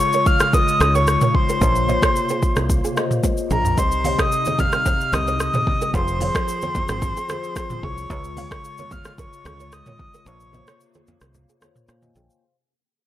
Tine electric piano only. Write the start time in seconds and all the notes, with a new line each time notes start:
Already playing: C#3 G#3 F4 C#5
0.79 C#3 G#3 D#4 C#5
0.87 F4
1.60 A#3 F4 C5 C#5
1.87 A#3 F4 C5 C#5
2.95 A#3 F4 C5 D#5
3.76 C3 C4 G4 D#5
4.03 C3 C4 G4 D#5
5.12 C3 C4 G4 D#5
5.93 F3 F4 G#4 C5
6.20 F3 F4 G#4 C5
7.28 F3 F4 G#4 C5
8.09 C#3 G#3 F4 C#5
8.36 C#3 G#3 F4 C#5
9.44 C#3 G#3 F4 C#5
10.25 A#3 F4 C5 C#5
10.52 A#3 F4 C5 C#5
11.60 A#3 F4 C5 C#5
11.88 C5 F5
12.02 D#5 G#5
12.15 C#5 G5
12.30 C5 F5